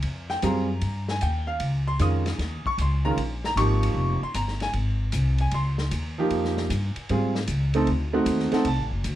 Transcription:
0.02 0.42 F2 medium
0.02 ride medium
0.30 0.43 G5 loud
0.30 snare soft
0.42 0.81 F#2 medium
0.42 0.66 G3 medium
0.42 0.67 C4 medium
0.42 0.67 F4 medium
0.42 0.67 G#4 medium
0.42 1.05 A#5 medium
0.42 hi-hat pedal medium
0.42 ride medium
0.81 1.20 G2 medium
0.81 ride medium
1.08 1.22 G#5 medium
1.08 snare medium
1.21 1.60 D#2 medium
1.21 1.47 G5 medium
1.21 hi-hat pedal medium
1.21 ride medium
1.47 1.60 F5 medium
1.60 1.99 C#2 medium
1.60 ride medium
1.88 2.00 C6 loud
1.99 2.38 F2 medium
1.99 2.23 D#3 medium
1.99 2.24 G#3 medium
1.99 2.24 C#4 medium
1.99 2.24 F4 medium
1.99 2.62 D#6 medium
1.99 hi-hat pedal medium
1.99 ride medium
2.26 snare medium
2.26 ride medium
2.39 2.63 D#2 medium
2.39 snare soft
2.39 ride medium
2.65 2.79 C#6 medium
2.65 muted upright bass stroke soft
2.65 kick medium
2.78 3.16 C#2 medium
2.78 3.06 C6 medium
2.78 hi-hat pedal soft
2.78 ride medium
3.05 3.17 D#3 medium
3.05 3.17 G#3 medium
3.05 3.17 C#4 medium
3.05 3.17 F4 medium
3.05 3.18 A#5 loud
3.17 3.55 A#1 medium
3.17 ride medium
3.44 3.58 A#5 loud
3.44 snare medium
3.56 3.94 G#1 medium
3.56 4.18 F3 medium
3.56 4.18 A#3 medium
3.56 4.17 D#4 medium
3.56 4.18 G4 medium
3.56 4.19 C#6 loud
3.56 hi-hat pedal medium
3.56 ride medium
3.83 ride medium
3.94 4.20 F1 medium
4.22 4.36 C6 medium
4.22 muted upright bass stroke soft
4.34 4.73 G1 medium
4.34 4.61 A#5 medium
4.34 hi-hat pedal medium
4.34 ride medium
4.48 snare soft
4.60 4.70 G#5 loud
4.60 snare soft
4.60 ride soft
4.73 5.12 G#1 medium
4.73 ride medium
5.12 5.51 C2 loud
5.12 hi-hat pedal medium
5.12 ride medium
5.38 5.53 G#5 medium
5.38 ride medium
5.51 5.91 C#2 medium
5.51 5.79 C6 medium
5.51 ride medium
5.78 snare soft
5.91 6.30 D#2 medium
5.91 hi-hat pedal medium
5.91 ride medium
6.18 6.68 F3 medium
6.18 6.68 A#3 medium
6.18 6.68 D#4 medium
6.18 6.69 G4 medium
6.30 6.69 F2 medium
6.30 ride medium
6.45 snare soft
6.57 snare soft
6.70 6.95 G2 loud
6.70 hi-hat pedal medium
6.70 ride medium
6.96 muted upright bass stroke soft
6.96 ride medium
7.09 7.47 G#2 medium
7.09 7.34 G3 medium
7.09 7.34 C4 medium
7.09 7.34 F4 medium
7.09 7.34 G#4 medium
7.09 ride medium
7.35 snare medium
7.47 7.86 C#2 loud
7.47 hi-hat pedal medium
7.47 ride medium
7.74 7.87 A3 medium
7.74 7.87 C4 medium
7.74 7.87 D#4 medium
7.74 7.87 A4 medium
7.74 ride medium
7.87 8.25 D2 medium
7.87 ride medium
8.13 8.50 A3 medium
8.13 8.50 C4 medium
8.13 8.51 D#4 medium
8.13 8.51 F#4 medium
8.26 8.51 D#2 loud
8.26 hi-hat pedal medium
8.26 ride medium
8.40 snare soft
8.52 8.65 A3 medium
8.52 8.65 C4 medium
8.52 8.65 D#4 medium
8.52 8.65 A4 medium
8.52 8.66 F#5 medium
8.52 muted upright bass stroke soft
8.52 snare soft
8.52 ride medium
8.65 8.78 C2 medium
8.65 8.83 A5 medium
8.65 ride medium
8.78 8.90 A1 medium
8.91 9.04 F#1 medium
9.04 9.15 D2 loud
9.04 hi-hat pedal medium
9.04 ride medium

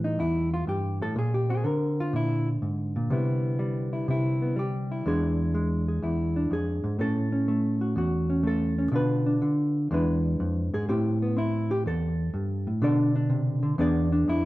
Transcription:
0.00 0.18 A2 medium
0.00 1.14 E3 medium
0.00 1.16 G3 soft
0.00 0.19 G4 soft
0.04 0.19 D#4 medium
0.19 0.67 E2 medium
0.19 0.53 E4 medium
0.54 0.68 F4 medium
0.67 1.01 G2 medium
0.67 1.02 G4 medium
1.02 1.16 A2 medium
1.02 1.17 A4 loud
1.16 1.65 A#2 medium
1.16 1.34 G#4 medium
1.34 1.50 G4 medium
1.50 3.09 C4 soft
1.50 1.66 G#4 medium
1.64 5.05 D3 medium
1.64 1.99 A#4 loud
2.00 2.14 F4 medium
2.13 2.62 A#2 medium
2.13 2.48 E4 medium
2.62 2.96 G#2 medium
2.96 3.11 A#2 medium
3.10 4.07 C3 medium
3.10 3.58 G3 soft
3.10 4.42 B3 medium
3.10 3.93 E4 soft
3.59 4.55 G3 medium
3.93 4.10 E4 soft
4.08 5.03 C3 medium
4.08 4.58 E4 medium
4.42 4.59 B3 soft
4.56 5.05 G3 medium
4.56 5.06 G4 medium
4.92 6.03 E4 soft
5.06 6.01 E2 medium
5.06 5.53 G#3 soft
5.06 6.35 D4 medium
5.06 5.87 G#4 medium
5.55 6.98 G#3 medium
5.88 6.51 G#4 soft
6.02 6.50 E2 medium
6.02 6.51 E4 medium
6.36 6.98 D4 soft
6.51 6.83 F2 medium
6.51 7.00 G#4 medium
6.84 6.99 G#2 medium
6.99 7.96 A2 medium
6.99 7.47 A3 soft
6.99 7.31 C#4 soft
6.99 7.81 A4 medium
7.32 8.29 C#4 soft
7.48 8.42 A3 medium
7.81 7.96 F#4 soft
7.96 8.91 E2 medium
7.96 8.46 F#4 medium
8.30 8.77 C#4 soft
8.43 8.91 A3 medium
8.43 8.94 A4 medium
8.79 8.92 C#4 soft
8.92 9.41 B2 medium
8.92 9.41 D3 soft
8.92 9.25 D4 soft
8.92 9.89 F4 soft
8.96 9.77 B4 medium
9.26 9.89 D4 soft
9.42 9.91 D3 medium
9.91 10.39 E2 medium
9.91 10.86 G#3 medium
9.91 10.87 D4 medium
9.91 10.74 E4 medium
9.91 10.87 B4 medium
10.40 10.73 F2 medium
10.74 10.88 G#2 medium
10.74 10.88 G#4 medium
10.89 11.85 A2 medium
10.89 11.35 C4 medium
10.89 11.37 E4 medium
10.89 11.22 G4 medium
11.22 11.37 B3 medium
11.37 12.80 C4 medium
11.37 11.71 E4 medium
11.71 11.85 G4 medium
11.86 12.33 E2 medium
11.86 12.68 A4 medium
12.34 12.67 G2 medium
12.67 12.82 A2 medium
12.82 13.77 B2 medium
12.82 13.62 D3 medium
12.82 13.14 D4 medium
12.82 13.78 A4 medium
12.82 13.78 D5 medium
13.16 13.77 D4 medium
13.30 13.64 C3 medium
13.63 13.78 D3 medium
13.78 14.27 E2 medium
13.78 14.45 B3 medium
13.78 14.11 D4 medium
13.78 14.45 G#4 medium
13.78 14.29 D5 medium
14.12 14.45 D4 medium
14.28 14.45 F2 medium
14.28 14.45 E4 medium

